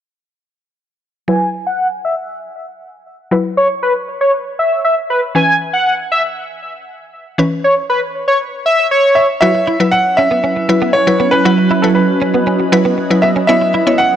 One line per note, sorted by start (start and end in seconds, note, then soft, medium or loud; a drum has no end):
1.28 3.28 F#3 medium
1.28 3.28 E4 medium
1.28 3.28 B4 medium
1.28 1.49 G#5 loud
1.67 1.88 F#5 medium
2.05 2.15 E5 medium
3.31 5.31 F#3 medium
3.31 5.31 E4 medium
3.31 5.31 B4 medium
3.57 3.68 C#5 medium
3.83 3.93 B4 medium
4.21 4.31 C#5 medium
4.59 4.80 E5 medium
4.84 4.95 E5 medium
5.10 5.20 B4 medium
5.35 7.34 E3 medium
5.35 7.35 C#4 medium
5.35 7.35 B4 medium
5.35 5.56 G#5 loud
5.73 5.94 F#5 medium
6.12 6.22 E5 medium
7.38 9.38 E3 medium
7.38 9.38 C#4 medium
7.38 9.38 B4 medium
7.64 7.75 C#5 medium
7.90 8.00 B4 medium
8.28 8.38 C#5 medium
8.66 8.87 E5 medium
8.91 9.27 C#5 medium
9.15 9.21 E5 medium
9.41 9.69 F#3 medium
9.41 13.45 F#3 medium
9.41 13.45 C#4 medium
9.41 11.43 E4 medium
9.41 9.69 E4 medium
9.41 9.51 F#4 medium
9.41 13.45 B4 medium
9.41 9.69 B4 medium
9.41 9.94 E5 loud
9.55 muted clean electric guitar stroke soft
9.67 9.77 E4 medium
9.80 10.44 F#3 medium
9.80 10.44 E4 medium
9.80 10.44 B4 medium
9.91 10.18 F#5 loud
9.91 muted clean electric guitar stroke soft
10.17 10.27 C#4 medium
10.17 10.90 E5 loud
10.31 10.40 B3 medium
10.44 10.53 C#4 medium
10.56 muted clean electric guitar stroke soft
10.69 10.96 F#3 medium
10.69 10.96 E4 medium
10.69 10.96 B4 medium
10.82 10.91 B3 medium
10.93 11.33 C#5 medium
10.93 muted clean electric guitar stroke soft
11.07 11.34 F#3 medium
11.07 11.34 E4 medium
11.07 11.35 B4 medium
11.20 11.29 B3 medium
11.31 11.42 C#4 medium
11.31 11.84 B4 loud
11.45 11.73 F#3 medium
11.45 11.73 E4 medium
11.45 11.54 F#4 medium
11.45 11.73 B4 medium
11.45 13.47 D#5 medium
11.58 muted clean electric guitar stroke soft
11.71 11.80 E4 medium
11.82 12.47 F#3 medium
11.82 12.47 E4 medium
11.82 11.87 A4 medium
11.82 12.47 B4 medium
11.95 12.68 B4 medium
11.95 muted clean electric guitar stroke soft
12.22 12.31 C#4 medium
12.34 12.44 B3 medium
12.47 12.56 C#4 medium
12.60 muted clean electric guitar stroke soft
12.72 13.00 F#3 medium
12.72 13.00 E4 medium
12.72 13.00 B4 loud
12.85 12.94 B3 medium
12.98 muted clean electric guitar stroke soft
13.10 13.38 F#3 medium
13.10 13.38 E4 medium
13.10 13.38 B4 medium
13.22 13.32 B3 medium
13.22 13.28 E5 medium
13.36 13.45 C#4 medium
13.47 14.16 C#3 medium
13.47 14.16 G#3 medium
13.47 13.76 B3 medium
13.47 14.16 B3 medium
13.47 13.58 C#4 medium
13.47 14.16 E4 loud
13.47 13.76 E4 medium
13.47 13.76 C#5 medium
13.47 14.00 E5 loud
13.62 muted clean electric guitar stroke soft
13.74 13.83 E4 medium
13.87 14.16 B3 medium
13.87 14.16 E4 medium
13.87 14.16 C#5 medium
13.98 14.16 F#5 loud
13.98 muted clean electric guitar stroke soft